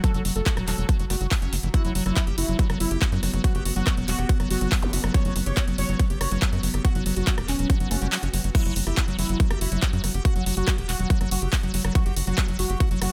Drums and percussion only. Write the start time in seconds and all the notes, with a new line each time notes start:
0.04 kick, closed hi-hat
0.14 closed hi-hat
0.25 open hi-hat
0.36 closed hi-hat
0.46 kick, clap, closed hi-hat
0.57 cross-stick, closed hi-hat
0.68 clap, open hi-hat
0.78 closed hi-hat
0.89 kick, closed hi-hat
1.00 closed hi-hat
1.10 cross-stick, open hi-hat
1.21 closed hi-hat
1.31 kick, clap, open hi-hat
1.42 closed hi-hat
1.53 open hi-hat
1.63 closed hi-hat
1.74 kick, closed hi-hat
1.85 closed hi-hat
1.95 open hi-hat
2.06 cross-stick, closed hi-hat
2.17 kick, clap, closed hi-hat
2.27 closed hi-hat
2.38 open hi-hat
2.48 closed hi-hat
2.59 kick, closed hi-hat
2.70 cross-stick, closed hi-hat
2.80 open hi-hat
2.91 closed hi-hat
3.02 kick, clap, closed hi-hat
3.12 closed hi-hat
3.23 cross-stick, open hi-hat
3.34 closed hi-hat
3.44 kick, closed hi-hat
3.55 closed hi-hat
3.65 open hi-hat
3.76 closed hi-hat
3.87 kick, cross-stick, clap, closed hi-hat
3.97 closed hi-hat
4.08 clap, open hi-hat
4.19 closed hi-hat
4.29 kick, closed hi-hat
4.40 cross-stick, closed hi-hat
4.51 open hi-hat
4.61 closed hi-hat
4.72 kick, clap, open hi-hat
4.83 closed hi-hat
4.93 open hi-hat
5.04 cross-stick, closed hi-hat
5.14 kick, closed hi-hat
5.25 closed hi-hat
5.36 open hi-hat
5.46 closed hi-hat
5.57 kick, cross-stick, clap, closed hi-hat
5.68 closed hi-hat
5.78 open hi-hat
5.89 closed hi-hat
6.00 kick, closed hi-hat
6.10 closed hi-hat
6.21 cross-stick, open hi-hat
6.31 closed hi-hat
6.42 kick, clap, closed hi-hat
6.53 closed hi-hat
6.63 open hi-hat
6.74 cross-stick, closed hi-hat
6.85 kick, closed hi-hat
6.95 closed hi-hat
7.06 open hi-hat
7.16 closed hi-hat
7.27 kick, clap, closed hi-hat
7.38 cross-stick, closed hi-hat
7.48 clap, open hi-hat
7.59 closed hi-hat
7.70 kick, closed hi-hat
7.80 closed hi-hat
7.91 cross-stick, open hi-hat
8.02 closed hi-hat
8.12 clap, open hi-hat
8.23 closed hi-hat
8.34 open hi-hat
8.44 closed hi-hat
8.55 kick, closed hi-hat, crash
8.65 closed hi-hat
8.76 open hi-hat
8.87 cross-stick, closed hi-hat
8.97 kick, clap, closed hi-hat
9.08 closed hi-hat
9.19 open hi-hat
9.29 closed hi-hat
9.40 kick, closed hi-hat
9.51 cross-stick, closed hi-hat
9.61 open hi-hat
9.72 closed hi-hat
9.82 kick, clap, closed hi-hat
9.93 closed hi-hat
10.04 cross-stick, open hi-hat
10.14 closed hi-hat
10.25 kick, closed hi-hat
10.36 closed hi-hat
10.46 open hi-hat
10.57 closed hi-hat
10.68 kick, cross-stick, clap, closed hi-hat
10.78 closed hi-hat
10.89 clap, open hi-hat
10.99 closed hi-hat
11.10 kick, closed hi-hat
11.21 cross-stick, closed hi-hat
11.31 open hi-hat
11.42 closed hi-hat
11.53 kick, clap, open hi-hat
11.63 closed hi-hat
11.74 open hi-hat
11.85 cross-stick
11.95 kick, closed hi-hat
12.06 closed hi-hat
12.16 open hi-hat
12.27 closed hi-hat
12.38 kick, cross-stick, clap, closed hi-hat
12.48 closed hi-hat
12.59 open hi-hat
12.70 closed hi-hat
12.80 kick, closed hi-hat
12.91 closed hi-hat
13.02 cross-stick, open hi-hat